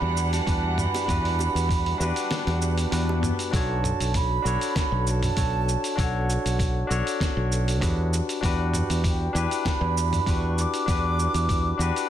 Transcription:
Already playing: E3 G3 D4 F#4 G4 B4 F#5 B5
0.02 E2
0.17 cabasa
0.32 A5, open hi-hat, high bongo, cabasa
0.46 E2 D4 F#4 G4 B4, kick, open hi-hat, cabasa
0.78 B5, mid tom, cabasa
0.94 open hi-hat, high bongo, cabasa
1.06 E2 D4 F#4 G4, kick, mid tom, open hi-hat, cabasa
1.10 B4
1.25 open hi-hat
1.39 high bongo, cabasa
1.55 E2, open hi-hat, cabasa
1.69 kick, open hi-hat, cabasa
1.86 open hi-hat
1.98 E2 D4 F#4 G4, high bongo, cabasa
2.03 B4
2.16 open hi-hat, cabasa
2.30 snare, open hi-hat, swell, cabasa
2.47 E2, open hi-hat, high bongo
2.62 cabasa
2.78 open hi-hat, cabasa
2.91 E2 D4 F#4 G4 B4, open hi-hat, cabasa
3.09 high bongo
3.23 mid tom, cabasa
3.39 open hi-hat, cabasa
3.51 B1 D4 F#4 A4 A5, kick, open hi-hat, cabasa
3.56 C#5
3.84 mid tom, cabasa
4.00 B1, open hi-hat, cabasa
4.14 B5, kick, open hi-hat, cabasa
4.42 B1 D4 F#4 A4, cabasa
4.47 C#5
4.61 open hi-hat, cabasa
4.76 B5, kick, snare, open hi-hat, cabasa
4.92 B1
5.07 A5, cabasa
5.23 mid tom, open hi-hat, cabasa
5.36 B1 D4 F#4 A4 C#5, kick, open hi-hat, cabasa
5.69 cabasa
5.84 open hi-hat, cabasa
5.96 B1 D4 F#4 A4, kick, open hi-hat, cabasa
6.00 C#5 F#5
6.30 cabasa
6.45 B1, open hi-hat, cabasa
6.59 kick, open hi-hat, cabasa
6.87 B1 D4 F#4 A4, cabasa
6.92 C#5
7.07 open hi-hat, cabasa
7.20 kick, snare, open hi-hat, cabasa
7.37 B1
7.52 cabasa
7.68 open hi-hat, cabasa
7.81 E2 D4 F#4 G4 B4, kick, mid tom, open hi-hat, cabasa
8.14 cabasa
8.29 open hi-hat, cabasa
8.41 E2 D4 F#4 G4, kick, open hi-hat, cabasa
8.45 B4
8.74 mid tom, cabasa
8.90 E2, open hi-hat, cabasa
9.04 G5, kick, open hi-hat, cabasa
9.33 E2 D4 E4 G4, cabasa
9.38 B4
9.51 open hi-hat, cabasa
9.65 B5, kick, snare, open hi-hat, cabasa
9.81 E2
9.98 cabasa
10.13 mid tom, open hi-hat, cabasa
10.26 E2 D4 F#4 G4 B4 C#6, kick, open hi-hat, cabasa
10.58 D6, cabasa
10.74 open hi-hat, cabasa
10.86 E2 D4 F#4 G4, kick, open hi-hat, cabasa
10.90 B4
11.19 cabasa
11.34 E2, open hi-hat, cabasa
11.49 kick, open hi-hat, cabasa
11.77 E2 D4 F#4 G4, cabasa
11.82 B4
11.96 open hi-hat, cabasa

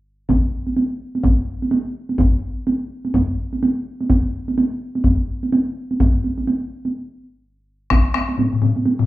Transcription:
0.29 taiko, taiko high
0.67 taiko high
0.76 taiko high
1.15 taiko high
1.24 taiko, taiko high
1.62 taiko high
1.71 taiko high
2.09 taiko high
2.19 taiko, taiko high
2.67 taiko high
3.05 taiko high
3.14 taiko, taiko high
3.53 taiko high
3.63 taiko high
4.01 taiko high
4.10 taiko, taiko high
4.48 taiko high
4.58 taiko high
4.95 taiko high
5.04 taiko, taiko high
5.43 taiko high
5.52 taiko high
5.91 taiko high
6.00 taiko, taiko high
6.24 taiko high
6.38 taiko high
6.47 taiko high
6.85 taiko high
7.90 taiko rim, taiko, taiko high
8.14 taiko rim, taiko high
8.29 taiko high
8.38 taiko low-mid, taiko high
8.52 taiko low-mid
8.62 taiko low-mid, taiko high
8.76 taiko high
8.86 taiko high
8.99 taiko low-mid

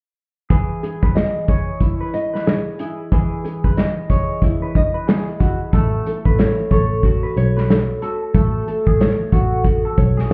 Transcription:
0.50 E3 G#4, kick, closed hi-hat
0.83 G#4, closed hi-hat
1.03 B4, kick
1.15 D#5, snare, closed hi-hat
1.48 G#4 C#5, kick, closed hi-hat
1.81 E4, kick, closed hi-hat
2.01 B4
2.14 D#5, closed hi-hat
2.34 B4, snare
2.46 G#4, snare, closed hi-hat
2.79 E4 G#4, closed hi-hat
3.12 E3 G#4, kick, closed hi-hat
3.44 G#4, closed hi-hat
3.64 B4, kick
3.77 D#5, snare, closed hi-hat
4.10 G#4 C#5, kick, closed hi-hat
4.42 E4, kick, closed hi-hat
4.62 B4
4.75 D#5, kick, closed hi-hat
4.94 B4
5.07 G#4, snare, closed hi-hat
5.40 E4 F#4, kick, closed hi-hat
5.73 A1 A3 A4, kick, closed hi-hat
6.06 A4, closed hi-hat
6.25 A1 B4, kick
6.39 C#5, snare, closed hi-hat
6.71 A1 A4 C#5, kick, closed hi-hat
7.03 F#4, kick, closed hi-hat
7.23 B4
7.36 B1 C#5, closed hi-hat
7.57 B4, snare
7.70 A4, snare, closed hi-hat
8.02 F#4 A4, closed hi-hat
8.34 A1 A3 A4, kick, closed hi-hat
8.68 A4, closed hi-hat
8.87 A1 G#4, kick
9.00 C#5, snare, closed hi-hat
9.32 A1 F#4 A4, kick, closed hi-hat
9.65 F#4, kick, closed hi-hat
9.85 A4
9.98 B1 C#5, kick, closed hi-hat
10.17 G#4, snare

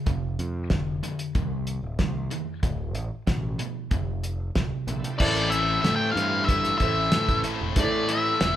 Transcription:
0.06 F1 F2 C3, kick, closed hi-hat
0.39 F2, closed hi-hat
0.70 F1 F2 D3, kick, snare, closed hi-hat
1.03 F2 D3, closed hi-hat
1.19 closed hi-hat
1.35 C2 F2 D#3, kick, closed hi-hat
1.67 closed hi-hat
1.83 D1
1.99 C2 F2 D#3, kick, snare, closed hi-hat
2.30 F2 D#3, closed hi-hat
2.63 D1 D2 A2, kick, closed hi-hat
2.95 A1, closed hi-hat
3.27 A1 D2 B2, kick, snare, closed hi-hat
3.59 D2 B2, closed hi-hat
3.91 F1 D2 C3, kick, closed hi-hat
4.24 closed hi-hat
4.55 D1 D2 C3, kick, snare, closed hi-hat
4.87 A#1 D2 C3 A3 B3, closed hi-hat
4.93 C4 D4
5.00 E4 F4
5.04 G4, closed hi-hat
5.08 A4 B4
5.13 C5 D5
5.18 A1 A2 E3 A3 C4 E4 A4 C5 D5 E5, kick, crash
5.36 closed hi-hat
5.50 A2 E3 A3 E5, closed hi-hat
5.82 A2 E3 A3 E5, snare, closed hi-hat
5.96 G5
6.12 F5
6.16 G2 A2 E3 A3, closed hi-hat
6.45 A2 E3 E5, kick, closed hi-hat
6.49 A3
6.65 snare, closed hi-hat
6.78 A1 A2 E3 A3 E4 A4 C5 E5, kick, closed hi-hat
7.12 A2 E3 A3, snare, closed hi-hat
7.28 A1, kick, closed hi-hat
7.44 A2 E3 A3, closed hi-hat
7.61 E1
7.76 A2 E3 A3 C4 E4 A4 C5 D5 E5, kick, closed hi-hat
8.08 A2 E3 A3 E5, closed hi-hat
8.41 E1 A2 E3 A3, snare, closed hi-hat

